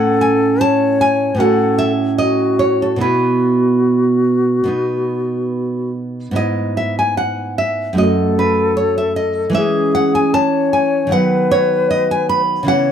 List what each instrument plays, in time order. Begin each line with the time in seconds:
Already playing: nylon-string guitar A2 C#4 E4 F#5, flute A4
0.21 nylon-string guitar G#5
0.61 flute C#5, nylon-string guitar A5
1.01 nylon-string guitar G#5
1.35 nylon-string guitar A2 C#4 F#4
1.40 flute A4, nylon-string guitar F#5
1.78 nylon-string guitar E5
2.18 flute F#4, nylon-string guitar D#5
2.59 nylon-string guitar C#5
2.82 nylon-string guitar A4
2.96 nylon-string guitar B2 B3
3.00 nylon-string guitar E4 B4, flute F#4
4.64 nylon-string guitar B2 B3 D#4
6.31 nylon-string guitar G#2 B3
6.35 nylon-string guitar E4 D#5
6.77 nylon-string guitar E5
6.99 nylon-string guitar G#5
7.17 nylon-string guitar F#5
7.58 nylon-string guitar E5
7.93 nylon-string guitar F#2 A3
7.97 nylon-string guitar F#4 D#5, flute A4
8.39 nylon-string guitar B4
8.77 nylon-string guitar C#5
8.98 nylon-string guitar E5
9.16 nylon-string guitar D#5
9.50 nylon-string guitar E3 G#3 C#4
9.55 flute G#4, nylon-string guitar E5
9.95 nylon-string guitar F#5
10.15 nylon-string guitar G#5
10.34 flute C#5, nylon-string guitar A5
10.73 nylon-string guitar G#5
11.07 nylon-string guitar D#3 F#3
11.11 nylon-string guitar B3 F#5, flute B4
11.51 nylon-string guitar C#5
11.90 nylon-string guitar D#5
12.11 nylon-string guitar G#5
12.29 nylon-string guitar B5
12.63 nylon-string guitar C#3 E3 B3
12.67 flute C#5, nylon-string guitar F#5